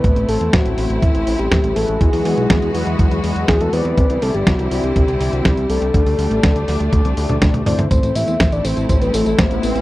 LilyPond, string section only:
\new Staff \with { instrumentName = "String section" } { \time 4/4 \key a \dorian \tempo 4 = 122 << { <c' e'>1 | <e fis b fis'>1 | <d c' e'>1 | <a d'>1 |
<c' e'>1 | } \\ { a1 | gis1 | g1~ | g1 |
a1 | } >> }